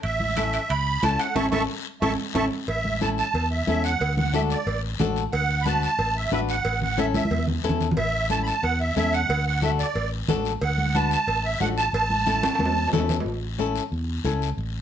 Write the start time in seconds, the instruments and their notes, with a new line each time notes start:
0.03 fingered electric bass A1, accordion E5, high timbale, long guiro
0.20 high conga
0.36 nylon-string guitar C#4 E4 A4, high conga, high timbale, short guiro
0.53 high timbale, short guiro
0.69 fingered electric bass C#2, accordion B5, high timbale, long guiro
1.03 fingered electric bass C#2, nylon-string guitar C#4 E4 A4, accordion A5, high conga, high timbale, short guiro
1.19 accordion F#5, high timbale, short guiro
1.35 fingered electric bass A1, nylon-string guitar C#4 E4 A4, accordion E5 A5 C#6, high conga, high timbale, long guiro
1.52 fingered electric bass A1, nylon-string guitar C#4 E4 A4, accordion E5 A5 C#6, high conga, high timbale, long guiro
2.02 fingered electric bass A1, nylon-string guitar C#4 E4 A4, accordion E5 A5 C#6, high conga, high timbale, long guiro
2.35 fingered electric bass A1, nylon-string guitar C#4 E4 A4, accordion E5 A5 C#6, high conga, high timbale, long guiro
2.68 fingered electric bass A1, accordion E5, cowbell, long guiro
2.85 high conga
3.01 nylon-string guitar C#4 E4 A4, accordion A5, high conga, short guiro
3.18 accordion A5, short guiro
3.34 fingered electric bass E2, cowbell, long guiro
3.51 accordion E5
3.67 fingered electric bass E2, nylon-string guitar C#4 E4 A4, accordion E5, high conga, short guiro
3.84 accordion F#5, short guiro
4.00 fingered electric bass D2, cowbell, long guiro
4.17 accordion F#5, high conga, low conga
4.33 nylon-string guitar D4 F#4 A4, accordion E5, high conga, short guiro
4.50 accordion D5, short guiro
4.67 fingered electric bass A1, cowbell, long guiro
4.99 fingered electric bass A1, nylon-string guitar D4 F#4 A4, high conga, low conga, low timbale, short guiro
5.16 short guiro
5.33 fingered electric bass D2, accordion F#5, cowbell, long guiro
5.62 nylon-string guitar D4, accordion B5, high conga
5.66 nylon-string guitar F#4 B4, accordion A5, short guiro
5.82 accordion A5, short guiro
5.99 fingered electric bass A1, cowbell, long guiro
6.17 accordion E5
6.32 fingered electric bass A1, nylon-string guitar D4 F#4 B4, accordion E5, high conga, short guiro
6.49 accordion F#5, short guiro
6.65 fingered electric bass A1, cowbell, long guiro
6.82 accordion F#5, low conga
6.98 nylon-string guitar C#4 E4 A4, accordion E5, high conga, short guiro
7.14 accordion E5, high conga, short guiro
7.25 high conga
7.31 fingered electric bass E2, cowbell, long guiro
7.36 high conga
7.47 low conga
7.63 fingered electric bass E2, nylon-string guitar C#4 E4 A4, low timbale, short guiro
7.70 low conga
7.80 low conga, short guiro
7.91 low conga
7.97 fingered electric bass A1, accordion E5, cowbell, long guiro
8.29 nylon-string guitar C#4 E4 A4, accordion A5, high conga, short guiro
8.43 accordion B5, short guiro
8.47 accordion A5
8.63 fingered electric bass E2, accordion F#5, cowbell, long guiro
8.80 accordion E5
8.96 fingered electric bass E2, nylon-string guitar C#4 E4 A4, accordion E5, high conga, short guiro
9.13 accordion F#5, short guiro
9.29 fingered electric bass D2, cowbell, long guiro
9.46 accordion F#5
9.62 nylon-string guitar D4 F#4 A4, accordion E5, high conga, short guiro
9.79 accordion D5, short guiro
9.95 fingered electric bass A1, cowbell, long guiro
10.28 fingered electric bass A1, nylon-string guitar D4 F#4 A4, high conga, low conga, low timbale, short guiro
10.45 short guiro
10.61 fingered electric bass D2, accordion F#5, cowbell, long guiro
10.78 high conga
10.95 nylon-string guitar D4 F#4 B4, accordion A5, high conga, short guiro
11.11 accordion A5, short guiro
11.27 fingered electric bass A1, cowbell, long guiro
11.44 accordion E5
11.60 fingered electric bass A1, nylon-string guitar D4 F#4 A4, accordion F#5, high conga, low timbale, short guiro
11.77 accordion A5, short guiro
11.93 fingered electric bass A1, accordion A5, cowbell, long guiro
12.10 high conga
12.26 nylon-string guitar C#4 E4 A4, high conga, short guiro
12.43 high conga, high timbale, short guiro
12.55 high timbale
12.59 fingered electric bass E2, cowbell, high conga, long guiro
12.65 low timbale
12.88 low timbale
12.93 fingered electric bass E2, nylon-string guitar C#4 E4 A4, low conga, short guiro
12.99 low timbale
13.09 low conga, low timbale, short guiro
13.20 low timbale
13.25 fingered electric bass A1, long guiro
13.59 nylon-string guitar C#4 E4 A4, high conga, short guiro
13.76 short guiro
13.92 fingered electric bass E2, long guiro
14.24 fingered electric bass C#2, nylon-string guitar C#4 E4 A4, high conga, short guiro
14.42 short guiro
14.57 fingered electric bass A1, long guiro